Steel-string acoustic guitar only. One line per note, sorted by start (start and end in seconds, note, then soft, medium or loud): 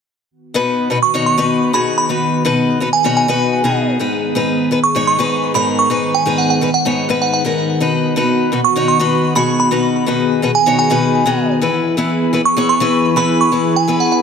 0.54 0.88 B2 medium
0.54 0.88 B3 medium
0.54 0.88 D#4 medium
0.54 0.88 F#4 medium
0.54 0.88 B4 medium
0.90 0.97 B2 medium
0.90 0.97 B3 medium
0.90 0.98 D#4 medium
0.90 0.98 F#4 medium
0.90 0.98 B4 medium
1.14 1.35 B2 medium
1.14 1.35 B3 medium
1.14 1.35 D#4 medium
1.14 1.36 F#4 medium
1.14 1.36 C#5 medium
1.38 1.71 B2 medium
1.38 1.71 B3 medium
1.38 1.71 D#4 medium
1.38 1.71 F#4 medium
1.38 1.71 B4 loud
1.73 2.07 B2 medium
1.73 2.07 B3 medium
1.73 2.07 D#4 medium
1.73 2.07 F#4 medium
1.73 2.07 G#4 medium
2.09 2.42 B2 medium
2.09 2.42 B3 medium
2.09 2.43 D#4 medium
2.09 2.43 F#4 medium
2.09 2.43 B4 medium
2.45 2.78 B2 medium
2.45 2.78 B3 medium
2.45 2.78 D#4 medium
2.45 2.78 F#4 medium
2.45 2.79 B4 medium
2.80 2.88 B2 medium
2.80 2.88 B3 medium
2.80 2.88 D#4 medium
2.80 2.88 F#4 medium
2.80 2.88 B4 medium
3.04 3.26 B2 medium
3.04 3.26 B3 medium
3.04 3.26 D#4 medium
3.04 3.26 F#4 medium
3.04 3.26 C#5 medium
3.28 3.61 B2 medium
3.28 3.62 B3 medium
3.28 3.62 D#4 medium
3.28 3.62 F#4 medium
3.28 3.62 B4 loud
3.64 3.97 B2 medium
3.64 3.97 B3 medium
3.64 3.97 D#4 medium
3.64 3.98 F#4 medium
3.64 3.98 G#4 medium
3.99 4.33 G#2 medium
3.99 4.33 B3 medium
3.99 4.33 D#4 medium
3.99 4.33 G#4 medium
3.99 4.33 B4 medium
4.35 4.68 G#2 medium
4.35 4.69 B3 medium
4.35 4.69 D#4 medium
4.35 4.69 G#4 medium
4.35 4.69 B4 medium
4.71 4.78 G#2 medium
4.71 4.78 B3 medium
4.71 4.79 D#4 medium
4.71 4.79 G#4 medium
4.71 4.79 B4 medium
4.95 5.16 G#2 medium
4.95 5.16 B3 medium
4.95 5.16 D#4 medium
4.95 5.17 G#4 medium
4.95 5.17 C#5 medium
5.19 5.52 G#2 medium
5.19 5.52 B3 medium
5.19 5.52 D#4 medium
5.19 5.52 G#4 medium
5.19 5.52 B4 loud
5.54 5.88 G#2 medium
5.54 5.88 B3 medium
5.54 5.88 D#4 medium
5.54 5.88 G#4 medium
5.54 5.88 A#4 medium
5.90 6.23 G#2 medium
5.90 6.23 B3 medium
5.90 6.24 D#4 medium
5.90 6.24 G#4 medium
5.90 6.24 B4 medium
6.26 6.59 G#2 medium
6.26 6.59 B3 medium
6.26 6.59 D#4 medium
6.26 6.59 G#4 medium
6.26 6.60 B4 medium
6.61 6.69 G#2 medium
6.61 6.69 B3 medium
6.61 6.69 D#4 medium
6.61 6.69 G#4 medium
6.61 6.69 B4 medium
6.85 7.07 G#2 medium
6.85 7.07 B3 medium
6.85 7.07 D#4 medium
6.85 7.07 G#4 medium
6.85 7.07 C#5 medium
7.09 7.42 G#2 medium
7.09 7.42 B3 medium
7.09 7.43 D#4 medium
7.09 7.43 G#4 medium
7.09 7.43 B4 medium
7.45 7.78 G#2 medium
7.45 7.78 B3 medium
7.45 7.78 D#4 medium
7.45 7.78 G#4 medium
7.45 7.79 A#4 medium
7.80 8.14 B2 medium
7.80 8.14 B3 medium
7.80 8.14 D#4 medium
7.80 8.14 F#4 medium
7.80 8.14 B4 medium
8.16 8.49 B2 medium
8.16 8.50 B3 medium
8.16 8.50 D#4 medium
8.16 8.50 F#4 medium
8.16 8.50 B4 medium
8.52 8.59 B2 medium
8.52 8.59 B3 medium
8.52 8.59 D#4 medium
8.52 8.60 F#4 medium
8.52 8.60 B4 medium
8.76 8.97 B2 medium
8.76 8.97 B3 medium
8.76 8.97 D#4 medium
8.76 8.97 F#4 medium
8.76 8.98 C#5 medium
8.99 9.33 B2 medium
8.99 9.33 B3 medium
8.99 9.33 D#4 medium
8.99 9.33 F#4 medium
8.99 9.33 B4 loud
9.35 9.68 B2 medium
9.35 9.69 B3 medium
9.35 9.69 D#4 medium
9.35 9.69 F#4 medium
9.35 9.69 G#4 loud
9.71 10.04 B2 medium
9.71 10.04 B3 medium
9.71 10.05 D#4 medium
9.71 10.05 F#4 medium
9.71 10.05 B4 medium
10.06 10.40 B2 medium
10.06 10.40 B3 medium
10.06 10.40 D#4 medium
10.06 10.40 F#4 medium
10.06 10.41 B4 medium
10.42 10.50 B2 medium
10.42 10.50 B3 medium
10.42 10.50 D#4 medium
10.42 10.50 F#4 medium
10.42 10.50 B4 medium
10.66 10.88 B2 medium
10.66 10.88 B3 medium
10.66 10.88 D#4 medium
10.66 10.88 F#4 medium
10.66 10.88 C#5 medium
10.90 11.23 B2 medium
10.90 11.23 B3 medium
10.90 11.24 D#4 medium
10.90 11.24 F#4 medium
10.90 11.24 B4 loud
11.26 11.59 B2 medium
11.26 11.59 B3 medium
11.26 11.59 D#4 medium
11.26 11.59 F#4 medium
11.26 11.60 G#4 loud
11.62 11.95 E3 medium
11.62 11.95 B3 medium
11.62 11.95 E4 medium
11.62 11.95 G#4 medium
11.62 11.95 B4 medium
11.97 12.30 E3 medium
11.97 12.31 B3 medium
11.97 12.31 E4 medium
11.97 12.31 G#4 medium
11.97 12.31 B4 medium
12.33 12.40 E3 medium
12.33 12.40 B3 medium
12.33 12.40 E4 medium
12.33 12.41 G#4 medium
12.33 12.41 B4 medium
12.57 12.78 E3 medium
12.57 12.78 B3 medium
12.57 12.78 E4 medium
12.57 12.78 G#4 medium
12.57 12.79 C#5 medium
12.80 13.14 E3 loud
12.80 13.14 B3 medium
12.80 13.14 E4 medium
12.80 13.14 G#4 medium
12.80 13.14 B4 loud
13.16 13.49 E3 medium
13.16 13.50 B3 medium
13.16 13.50 E4 medium
13.16 13.50 G#4 medium
13.16 13.50 B4 medium
13.52 13.85 E3 medium
13.52 13.85 B3 medium
13.52 13.85 E4 medium
13.52 13.86 G#4 medium
13.52 13.86 B4 medium
13.88 14.21 E3 medium
13.88 14.21 B3 medium
13.88 14.21 E4 medium
13.88 14.21 G#4 medium
13.88 14.21 B4 medium